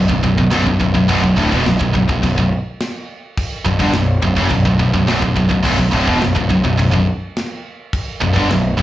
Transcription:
0.09 picked electric bass B0, distorted electric guitar B1 F#2, kick
0.23 picked electric bass B0, distorted electric guitar B1 F#2, kick
0.38 picked electric bass B0, distorted electric guitar B1 F#2, kick
0.51 picked electric bass B0, distorted electric guitar B1 F#2, snare, china
0.66 picked electric bass B0, distorted electric guitar B1 F#2, kick
0.80 picked electric bass B0, distorted electric guitar B1 F#2, kick
0.95 picked electric bass B0, distorted electric guitar B1 F#2, kick
1.08 picked electric bass B0, distorted electric guitar B1 F#2, kick, china
1.23 picked electric bass B0, distorted electric guitar B1 F#2, kick
1.37 picked electric bass D1, distorted electric guitar D2 A2, kick
1.52 picked electric bass E1, distorted electric guitar E2 B2, kick
1.65 picked electric bass B0, distorted electric guitar B1 F#2, snare, china
1.79 picked electric bass B0, distorted electric guitar B1 F#2, kick
1.94 picked electric bass B0, distorted electric guitar B1 F#2, kick
2.07 picked electric bass B0, distorted electric guitar B1 F#2, kick
2.22 picked electric bass B0, distorted electric guitar B1 F#2, kick, china
2.36 picked electric bass B0, distorted electric guitar B1 F#2, kick
2.80 snare, china
3.38 kick, china
3.65 picked electric bass B0, distorted electric guitar B1 F#2, kick
3.79 picked electric bass G1, distorted electric guitar G2 D3, kick
3.93 picked electric bass B0, distorted electric guitar B1 F#2, snare, china
4.22 picked electric bass B0, distorted electric guitar B1 F#2, kick
4.36 picked electric bass F#1, distorted electric guitar F#2 C#3, kick
4.50 picked electric bass B0, distorted electric guitar B1 F#2, kick, china
4.65 picked electric bass B0, distorted electric guitar B1 F#2, kick
4.79 picked electric bass B0, distorted electric guitar B1 F#2, kick
4.93 picked electric bass B0, distorted electric guitar B1 F#2, kick
5.07 picked electric bass B0, distorted electric guitar B1 F#2, snare, china
5.21 picked electric bass B0, distorted electric guitar B1 F#2, kick
5.36 picked electric bass B0, distorted electric guitar B1 F#2, kick
5.50 picked electric bass B0, distorted electric guitar B1 F#2, kick
5.64 picked electric bass B0, distorted electric guitar B1 F#2, kick, crash, china
5.79 picked electric bass B0, distorted electric guitar B1 F#2, kick
5.93 picked electric bass D1, distorted electric guitar D2 A2, kick
6.08 picked electric bass E1, distorted electric guitar E2 B2, kick
6.21 picked electric bass B0, distorted electric guitar B1 F#2, snare, china
6.35 picked electric bass B0, distorted electric guitar B1 F#2, kick
6.49 picked electric bass B0, distorted electric guitar B1 F#2, kick
6.65 picked electric bass B0, distorted electric guitar B1 F#2, kick
6.79 picked electric bass B0, distorted electric guitar B1 F#2, kick, china
6.93 picked electric bass B0, distorted electric guitar B1 F#2, kick
7.37 snare, china
7.93 kick, china
8.21 picked electric bass B0, distorted electric guitar B1 F#2, kick
8.35 picked electric bass G1, distorted electric guitar G2 D3, kick
8.50 picked electric bass B0, distorted electric guitar B1 F#2, snare, china
8.77 picked electric bass B0, distorted electric guitar B1 F#2, kick

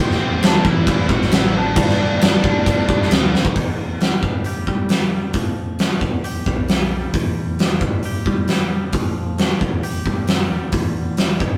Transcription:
Already playing: picked electric bass E2, distorted electric guitar E3, tonewheel organ E4 C5 G5 C6
0.00 distorted electric guitar G3 C4 E4, lead electric guitar C4 C5
0.11 snare
0.19 distorted electric guitar G3 C4 E4
0.43 distorted electric guitar E3 G3 C4 E4, lead electric guitar D4 D5, snare, crash
0.65 picked electric bass E3, distorted electric guitar G3 C4 E4, lead electric guitar E4 E5, kick
0.87 picked electric bass E3, kick, crash
1.09 picked electric bass A1, lead electric guitar F#4 F#5, kick
1.22 snare
1.31 distorted electric guitar E3 G3 C4 E4, lead electric guitar E4 E5, snare, crash
1.54 distorted electric guitar G3 C4 E4, lead electric guitar D4 D5
1.74 distorted electric guitar G2 D3 G3 B3 D4, picked electric bass G2, tonewheel organ E4 D5 B5, kick, crash
1.89 snare
1.99 distorted electric guitar G3 B3 D4
2.21 distorted electric guitar D3 G3 B3 D4, snare, crash
2.44 picked electric bass G2, distorted electric guitar G3 B3 D4, kick
2.66 picked electric bass G2, kick, crash
2.89 picked electric bass G2, kick
3.02 snare
3.10 picked electric bass D2, distorted electric guitar G2 D3 G3 B3 D4, snare, crash
3.33 picked electric bass E2, distorted electric guitar G3 B3 D4, snare
3.45 kick
3.56 picked electric bass E2, clean electric guitar E2, kick, open hi-hat
4.01 clean electric guitar G3, snare, open hi-hat
4.23 picked electric bass G2, clean electric guitar G2, kick
4.44 clean electric guitar G4, open hi-hat
4.67 picked electric bass G3, clean electric guitar G3, kick
4.89 clean electric guitar B3, snare, open hi-hat
5.14 clean electric guitar G3
5.33 picked electric bass F2, clean electric guitar F3, kick, open hi-hat
5.79 clean electric guitar A3, snare, open hi-hat
6.01 picked electric bass E2, clean electric guitar E2, kick
6.24 clean electric guitar G4, open hi-hat
6.46 picked electric bass B1, clean electric guitar G3, kick
6.68 clean electric guitar B3, snare, open hi-hat
6.93 clean electric guitar G3
7.14 picked electric bass E2, clean electric guitar E2, kick, open hi-hat
7.59 clean electric guitar G3, snare, open hi-hat
7.81 picked electric bass G2, clean electric guitar G2, kick
8.03 clean electric guitar G4, open hi-hat
8.26 picked electric bass G3, clean electric guitar G3, kick
8.48 clean electric guitar B3, snare, open hi-hat
8.71 clean electric guitar G3
8.93 picked electric bass F2, clean electric guitar F3, kick, open hi-hat
9.38 clean electric guitar A3, snare, open hi-hat
9.61 picked electric bass E2, clean electric guitar E2, kick
9.83 clean electric guitar G4, open hi-hat
10.06 picked electric bass G2, clean electric guitar G3, kick
10.27 picked electric bass F#2, clean electric guitar B3, snare, open hi-hat
10.51 picked electric bass E2, clean electric guitar G3
10.72 picked electric bass E2, clean electric guitar E2, kick, open hi-hat
11.17 clean electric guitar G3, snare, open hi-hat
11.40 picked electric bass G2, clean electric guitar G2, kick

